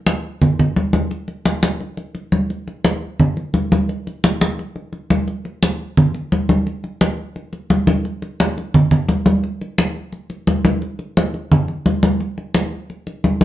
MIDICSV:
0, 0, Header, 1, 2, 480
1, 0, Start_track
1, 0, Tempo, 346620
1, 1534, Time_signature, 4, 2, 24, 8
1, 18619, End_track
2, 0, Start_track
2, 0, Title_t, "Drums"
2, 90, Note_on_c, 9, 63, 89
2, 229, Note_off_c, 9, 63, 0
2, 576, Note_on_c, 9, 63, 35
2, 576, Note_on_c, 9, 64, 75
2, 715, Note_off_c, 9, 63, 0
2, 715, Note_off_c, 9, 64, 0
2, 823, Note_on_c, 9, 63, 32
2, 823, Note_on_c, 9, 64, 61
2, 962, Note_off_c, 9, 63, 0
2, 962, Note_off_c, 9, 64, 0
2, 1058, Note_on_c, 9, 63, 75
2, 1197, Note_off_c, 9, 63, 0
2, 1290, Note_on_c, 9, 63, 84
2, 1429, Note_off_c, 9, 63, 0
2, 1537, Note_on_c, 9, 63, 32
2, 1676, Note_off_c, 9, 63, 0
2, 1771, Note_on_c, 9, 63, 33
2, 1910, Note_off_c, 9, 63, 0
2, 2015, Note_on_c, 9, 63, 87
2, 2154, Note_off_c, 9, 63, 0
2, 2254, Note_on_c, 9, 63, 86
2, 2393, Note_off_c, 9, 63, 0
2, 2500, Note_on_c, 9, 63, 36
2, 2638, Note_off_c, 9, 63, 0
2, 2734, Note_on_c, 9, 63, 37
2, 2872, Note_off_c, 9, 63, 0
2, 2973, Note_on_c, 9, 63, 32
2, 3111, Note_off_c, 9, 63, 0
2, 3215, Note_on_c, 9, 63, 80
2, 3354, Note_off_c, 9, 63, 0
2, 3464, Note_on_c, 9, 63, 36
2, 3603, Note_off_c, 9, 63, 0
2, 3705, Note_on_c, 9, 63, 31
2, 3844, Note_off_c, 9, 63, 0
2, 3940, Note_on_c, 9, 63, 85
2, 4079, Note_off_c, 9, 63, 0
2, 4426, Note_on_c, 9, 63, 35
2, 4426, Note_on_c, 9, 64, 84
2, 4564, Note_off_c, 9, 63, 0
2, 4564, Note_off_c, 9, 64, 0
2, 4665, Note_on_c, 9, 63, 34
2, 4803, Note_off_c, 9, 63, 0
2, 4901, Note_on_c, 9, 63, 73
2, 5039, Note_off_c, 9, 63, 0
2, 5150, Note_on_c, 9, 63, 94
2, 5288, Note_off_c, 9, 63, 0
2, 5391, Note_on_c, 9, 63, 36
2, 5530, Note_off_c, 9, 63, 0
2, 5638, Note_on_c, 9, 63, 35
2, 5776, Note_off_c, 9, 63, 0
2, 5871, Note_on_c, 9, 63, 89
2, 6009, Note_off_c, 9, 63, 0
2, 6113, Note_on_c, 9, 63, 95
2, 6251, Note_off_c, 9, 63, 0
2, 6357, Note_on_c, 9, 63, 37
2, 6495, Note_off_c, 9, 63, 0
2, 6588, Note_on_c, 9, 63, 32
2, 6726, Note_off_c, 9, 63, 0
2, 6822, Note_on_c, 9, 63, 33
2, 6961, Note_off_c, 9, 63, 0
2, 7068, Note_on_c, 9, 63, 90
2, 7207, Note_off_c, 9, 63, 0
2, 7307, Note_on_c, 9, 63, 33
2, 7446, Note_off_c, 9, 63, 0
2, 7549, Note_on_c, 9, 63, 32
2, 7687, Note_off_c, 9, 63, 0
2, 7791, Note_on_c, 9, 63, 91
2, 7930, Note_off_c, 9, 63, 0
2, 8273, Note_on_c, 9, 63, 35
2, 8273, Note_on_c, 9, 64, 86
2, 8412, Note_off_c, 9, 63, 0
2, 8412, Note_off_c, 9, 64, 0
2, 8509, Note_on_c, 9, 63, 34
2, 8648, Note_off_c, 9, 63, 0
2, 8754, Note_on_c, 9, 63, 78
2, 8893, Note_off_c, 9, 63, 0
2, 8990, Note_on_c, 9, 63, 91
2, 9129, Note_off_c, 9, 63, 0
2, 9232, Note_on_c, 9, 63, 39
2, 9371, Note_off_c, 9, 63, 0
2, 9470, Note_on_c, 9, 63, 39
2, 9608, Note_off_c, 9, 63, 0
2, 9709, Note_on_c, 9, 63, 89
2, 9847, Note_off_c, 9, 63, 0
2, 10190, Note_on_c, 9, 63, 35
2, 10329, Note_off_c, 9, 63, 0
2, 10424, Note_on_c, 9, 63, 37
2, 10563, Note_off_c, 9, 63, 0
2, 10666, Note_on_c, 9, 63, 89
2, 10804, Note_off_c, 9, 63, 0
2, 10902, Note_on_c, 9, 63, 96
2, 11040, Note_off_c, 9, 63, 0
2, 11148, Note_on_c, 9, 63, 37
2, 11287, Note_off_c, 9, 63, 0
2, 11387, Note_on_c, 9, 63, 37
2, 11526, Note_off_c, 9, 63, 0
2, 11634, Note_on_c, 9, 63, 102
2, 11772, Note_off_c, 9, 63, 0
2, 11878, Note_on_c, 9, 63, 40
2, 12016, Note_off_c, 9, 63, 0
2, 12109, Note_on_c, 9, 63, 38
2, 12109, Note_on_c, 9, 64, 89
2, 12247, Note_off_c, 9, 63, 0
2, 12247, Note_off_c, 9, 64, 0
2, 12341, Note_on_c, 9, 63, 34
2, 12341, Note_on_c, 9, 64, 77
2, 12480, Note_off_c, 9, 63, 0
2, 12480, Note_off_c, 9, 64, 0
2, 12581, Note_on_c, 9, 63, 79
2, 12720, Note_off_c, 9, 63, 0
2, 12820, Note_on_c, 9, 63, 102
2, 12959, Note_off_c, 9, 63, 0
2, 13067, Note_on_c, 9, 63, 37
2, 13206, Note_off_c, 9, 63, 0
2, 13314, Note_on_c, 9, 63, 36
2, 13453, Note_off_c, 9, 63, 0
2, 13548, Note_on_c, 9, 63, 83
2, 13687, Note_off_c, 9, 63, 0
2, 14021, Note_on_c, 9, 63, 37
2, 14160, Note_off_c, 9, 63, 0
2, 14261, Note_on_c, 9, 63, 38
2, 14399, Note_off_c, 9, 63, 0
2, 14503, Note_on_c, 9, 63, 90
2, 14642, Note_off_c, 9, 63, 0
2, 14743, Note_on_c, 9, 63, 99
2, 14882, Note_off_c, 9, 63, 0
2, 14983, Note_on_c, 9, 63, 38
2, 15122, Note_off_c, 9, 63, 0
2, 15219, Note_on_c, 9, 63, 37
2, 15358, Note_off_c, 9, 63, 0
2, 15470, Note_on_c, 9, 63, 85
2, 15609, Note_off_c, 9, 63, 0
2, 15704, Note_on_c, 9, 63, 33
2, 15843, Note_off_c, 9, 63, 0
2, 15947, Note_on_c, 9, 63, 39
2, 15947, Note_on_c, 9, 64, 90
2, 16085, Note_off_c, 9, 63, 0
2, 16085, Note_off_c, 9, 64, 0
2, 16178, Note_on_c, 9, 63, 34
2, 16317, Note_off_c, 9, 63, 0
2, 16420, Note_on_c, 9, 63, 83
2, 16559, Note_off_c, 9, 63, 0
2, 16658, Note_on_c, 9, 63, 104
2, 16796, Note_off_c, 9, 63, 0
2, 16901, Note_on_c, 9, 63, 34
2, 17040, Note_off_c, 9, 63, 0
2, 17141, Note_on_c, 9, 63, 38
2, 17279, Note_off_c, 9, 63, 0
2, 17373, Note_on_c, 9, 63, 91
2, 17511, Note_off_c, 9, 63, 0
2, 17861, Note_on_c, 9, 63, 35
2, 18000, Note_off_c, 9, 63, 0
2, 18098, Note_on_c, 9, 63, 36
2, 18236, Note_off_c, 9, 63, 0
2, 18337, Note_on_c, 9, 63, 80
2, 18475, Note_off_c, 9, 63, 0
2, 18570, Note_on_c, 9, 63, 97
2, 18619, Note_off_c, 9, 63, 0
2, 18619, End_track
0, 0, End_of_file